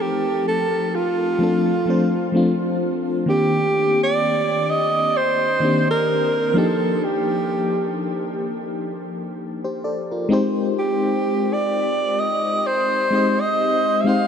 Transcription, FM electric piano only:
Already playing: F3 A3 C4 D#4 G4
1.39 F3 A3 C4 D4
1.43 A4
1.86 F3 A3 C4 D4
1.90 C5
2.32 F3 A3 C4 D4
2.37 F4
3.26 D#3 A#3 C4 D4
3.30 G4
5.60 D#3 A#3 C4 D4
5.65 G4
6.54 F3 A#3 D4 D#4
6.58 G4
9.64 G4 C5
9.84 A4 D5
10.11 F4 A#4
10.29 G#3 C4 D#4 G4
10.33 C5
13.11 G#3 C4 D#4 G4
13.15 D#5
14.04 G#3 C4 D#4 G4
14.09 C5

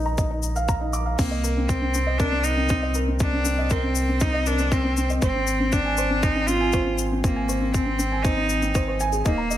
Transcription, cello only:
1.18 A#3
1.68 C4
2.18 D4
2.44 D#4
3.21 D4
3.71 C4
4.21 D#4
4.47 D4
4.73 C4
5.22 C4
5.72 D4
6.23 D#4
6.46 F4
7.23 A#3
7.73 C4
8.22 D#4
9.25 A#3

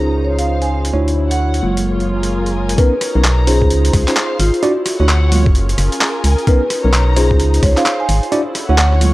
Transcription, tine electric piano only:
Already playing: C#4 D#4 F4 C5
0.94 D4 E4 F#4 C#5
1.63 F#3 G#3 A#3 F4
2.78 B3 C#4 D#4 A#4
3.16 B3 C#4 D#4 A#4
3.47 C#4 D#4 F4 C5
4.08 C#4 D#4 F4 C5
4.63 D4 E4 F#4 D5
5.00 D4 E4 F#4 C#5
5.32 F#3 G#3 A#3 F4
6.47 B3 C#4 D#4 A#4
6.85 B3 C#4 D#4 A#4
7.17 C#4 D#4 F4 C5
7.77 C#4 D#4 F4 C5
8.32 D4 E4 F#4 D5
8.69 D4 E4 F#4 C#5
9.01 F#3 G#3 A#3 F4

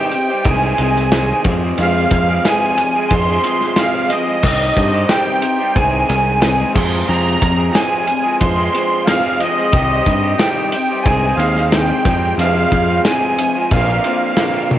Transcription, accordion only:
Already playing: G5
0.49 G#5
1.81 F5
2.45 G#5
3.09 C6
3.77 F5
4.09 D#5
5.08 G5
5.75 G#5
7.08 A#5
7.69 A#5
7.75 G#5
8.40 C6
9.05 F5
9.40 D#5
10.37 G5
10.71 G5
11.02 G5 G#5
11.36 F5
11.73 G5
12.40 F5
13.06 G#5
13.73 F5

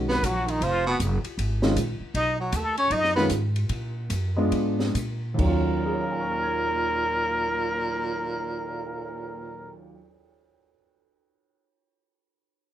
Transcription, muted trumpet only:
0.11 B4
0.25 F#4
0.50 D#4
0.64 F4
0.89 B3
2.16 D#5
2.40 F#4
2.56 A4
2.78 C#5
2.92 D#5
3.15 B4
5.40 A#4

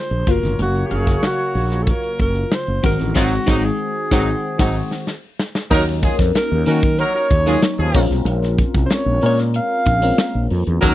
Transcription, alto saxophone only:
Already playing: C5
0.31 A#4
0.62 F#4
0.87 G4
0.95 G#4
1.27 F#4
1.83 A4
1.91 A#4
2.22 A#4
2.54 C5
2.86 A#4
3.17 F#4
3.64 G#4
6.37 A#4
6.68 A#4
6.99 C#5
8.86 C5
8.93 C#5
9.26 C#5
9.56 F5

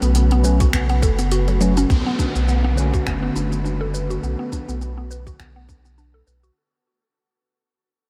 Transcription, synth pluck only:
0.02 B3
0.16 B3
0.32 B3
0.45 B4
0.61 F#4
0.74 B3
0.90 B3
1.03 A4
1.19 B3
1.32 F#4
1.48 F#3
1.61 F#3
1.77 C#4
1.90 B3
2.06 B3
2.19 D4
2.35 B3
2.48 B3
2.64 B3
2.77 B4
2.94 F#4
3.06 B3
3.23 B3
3.36 D4
3.52 B3
3.64 D4
3.81 A4
3.94 B4
4.10 F#4
4.23 B3
4.39 B3
4.52 D4
4.69 B3
4.81 B3
4.98 B3
5.11 B4
5.27 F#4
5.40 B3
5.56 B3
5.69 D4
5.85 B3
5.98 D4
6.14 A4
6.27 B4
6.43 F#4

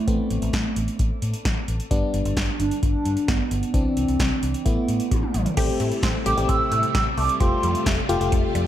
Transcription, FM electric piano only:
0.08 A3 B3 C4
1.91 G3 B3 D4
3.74 E3 C4 D4
4.65 A3 B3 E4
5.57 A3 C4 G4
6.26 A3 C4 G4
6.37 A3 C4 G4
7.40 A3 F4 G4
8.09 A3 F4 G4
8.21 A3 F4 G4

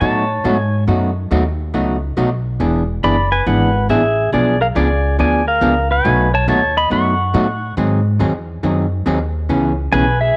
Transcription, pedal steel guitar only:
0.01 C#5 A5
0.57 G#5
3.04 D5 B5
3.32 B4 G#5
3.47 B4 F#5
3.90 G#4 E5
4.33 G#4 D5
4.61 A#4 F5
4.76 G#4 D5
5.20 D5 G#5
5.48 A#4 F5
5.91 B4 G#5
6.34 C#5 A5
6.49 C#5 A5
6.77 D#5 B5
6.92 F#5 C#6
9.93 B4 G#5
10.21 G#4 E5

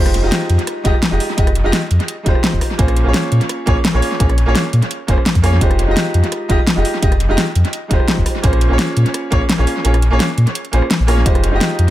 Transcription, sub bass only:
Already playing: F1
0.24 F1
0.49 F2
0.85 F1
1.12 F1
1.38 F1
1.65 F1
1.91 F2
2.26 F1
2.53 F1
2.79 A#1
3.06 A#1
3.32 A#2
3.67 A#1
3.94 A#1
4.20 A#1
4.47 A#1
4.73 A#2
5.08 F1
5.35 F2
5.61 F1
5.88 F1
6.14 F2
6.49 F1
6.77 F1
7.02 F1
7.29 F1
7.55 F2
7.91 F1
8.18 F1
8.44 A#1
8.71 A#1
8.97 A#2
9.32 A#1
9.59 A#1
9.85 A#1
10.12 A#1
10.38 A#2
10.73 A#1
11.00 A#1
11.26 F1
11.53 F1
11.79 F2

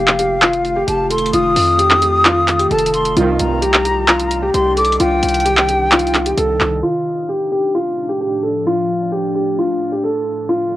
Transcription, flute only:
Already playing: F5
0.88 A5
1.11 C6
1.34 D#6
2.71 A5
2.94 C6
3.40 A#5
4.54 C6
4.77 D6
5.00 G5

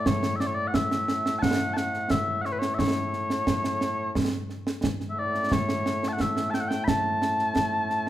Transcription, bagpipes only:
Already playing: A2 A3
0.07 C#5
0.36 E5
0.40 D5
0.47 C#5
0.55 D5
0.68 F#5
0.75 E5
1.39 F#5 A5
1.73 F#5 A5
2.11 E5
2.42 F#5
2.46 C#5
2.52 B4
2.59 C#5
2.74 E5
2.79 C#5
5.10 A2 A3 E5
5.19 D5
5.53 C#5
6.08 A5
6.13 F#5
6.21 E5
6.50 A5
6.54 G5
6.60 F#5
6.68 G5
6.84 A5 B5

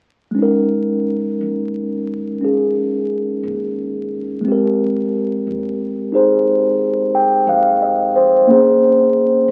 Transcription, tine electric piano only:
0.31 G#3 C#4
0.39 D#4 A#4
2.41 C#4 G#4
4.41 G#3 C4
4.48 G4 A#4
6.12 D#4 G#4 C5
7.15 G5
7.49 F5
7.82 D#5
8.16 C5
8.47 A#3 C#4
8.51 G#4 C5

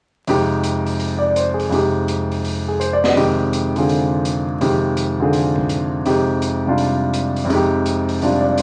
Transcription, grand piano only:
0.27 F2 C3 G#3 D#4 G4
1.19 D5
1.37 C5
1.54 G#4
1.70 F2 C3 G#3 D#4
1.75 G4
2.68 G#4
2.80 C5
2.93 D5
3.04 D#5
3.16 F2 C3 D#3 G#3 G4
3.76 D3 C4 F4 G#4
4.61 F2 C3 D#3 G#3 G4
5.20 D3 C4 F4 G#4
6.05 F2 C3 G#3 D#4 G4
6.66 C3 G3 D4 F4
7.45 F2 C3
7.50 G#3 D#4
7.55 G4
8.21 C3 G3 D4 F4
8.41 D5

